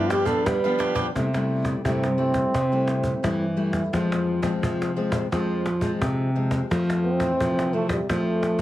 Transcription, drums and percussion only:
0.10 cajon slap
0.26 cajon bass
0.46 cajon bass, cajon slap
0.80 cajon slap
0.95 cajon bass
1.16 cajon bass, cajon slap
1.34 cajon slap
1.49 cajon slap
1.65 cajon bass, cajon slap
1.85 cajon bass
2.04 cajon slap
2.34 cajon bass, cajon slap
2.54 cajon bass, cajon slap
2.88 cajon slap
3.04 cajon bass
3.24 cajon bass, cajon slap
3.57 cajon slap
3.73 cajon bass, cajon slap
3.93 cajon bass, cajon slap
4.12 cajon slap
4.27 cajon slap
4.43 cajon bass, cajon slap
4.63 cajon bass
4.82 cajon slap
4.96 cajon slap
5.12 cajon bass, cajon slap
5.32 cajon bass, cajon slap
5.66 cajon slap
5.81 cajon bass
6.02 cajon bass, cajon slap
6.35 cajon slap
6.51 cajon bass, cajon slap
6.71 cajon bass, cajon slap
6.90 cajon slap
7.04 cajon slap
7.20 cajon bass, cajon slap
7.41 cajon bass
7.59 cajon slap
7.74 cajon slap
7.89 cajon bass, cajon slap
8.09 cajon bass, cajon slap
8.43 cajon slap

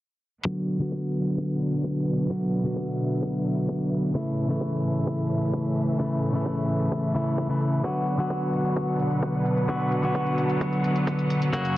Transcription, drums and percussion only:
0.46 kick
0.69 closed hi-hat
0.80 closed hi-hat
0.92 kick
1.15 closed hi-hat
1.27 closed hi-hat
1.38 kick, closed hi-hat
1.50 closed hi-hat
1.61 closed hi-hat
1.73 closed hi-hat
1.84 kick, closed hi-hat
1.96 closed hi-hat
2.07 closed hi-hat
2.19 closed hi-hat
2.30 kick
2.42 closed hi-hat
2.53 closed hi-hat
2.65 closed hi-hat
2.76 kick, closed hi-hat
3.00 closed hi-hat
3.11 closed hi-hat
3.23 kick, closed hi-hat
3.34 closed hi-hat
3.46 closed hi-hat
3.57 closed hi-hat
3.69 kick, closed hi-hat
3.80 closed hi-hat
3.92 closed hi-hat
4.03 closed hi-hat
4.15 kick, closed hi-hat
4.26 closed hi-hat
4.38 closed hi-hat
4.50 closed hi-hat
4.61 kick, closed hi-hat
4.73 closed hi-hat
4.84 closed hi-hat
4.96 closed hi-hat
5.07 kick, closed hi-hat
5.19 closed hi-hat
5.30 closed hi-hat
5.42 closed hi-hat
5.53 kick, closed hi-hat
5.65 closed hi-hat
5.76 closed hi-hat
5.88 closed hi-hat
6.00 kick, closed hi-hat
6.11 closed hi-hat
6.23 closed hi-hat
6.34 closed hi-hat
6.46 kick, closed hi-hat
6.57 closed hi-hat
6.69 closed hi-hat
6.80 closed hi-hat
6.92 kick, closed hi-hat
7.03 closed hi-hat
7.15 closed hi-hat
7.26 closed hi-hat
7.38 kick, closed hi-hat
7.50 closed hi-hat
7.61 closed hi-hat
7.73 closed hi-hat
7.84 kick, closed hi-hat
7.96 closed hi-hat
8.07 closed hi-hat
8.19 closed hi-hat
8.30 kick, closed hi-hat
8.42 closed hi-hat
8.53 closed hi-hat
8.65 closed hi-hat
8.76 kick, closed hi-hat
8.88 closed hi-hat
9.00 closed hi-hat
9.11 closed hi-hat
9.23 kick, closed hi-hat
9.34 closed hi-hat
9.46 closed hi-hat
9.57 closed hi-hat
9.69 kick, closed hi-hat
9.80 closed hi-hat
9.92 closed hi-hat
10.03 closed hi-hat
10.15 kick, closed hi-hat
10.26 closed hi-hat
10.38 closed hi-hat
10.50 closed hi-hat
10.61 kick, closed hi-hat
10.73 closed hi-hat
10.84 closed hi-hat
10.96 closed hi-hat
11.07 kick, closed hi-hat
11.19 closed hi-hat
11.30 closed hi-hat
11.42 closed hi-hat
11.53 kick, closed hi-hat
11.65 closed hi-hat

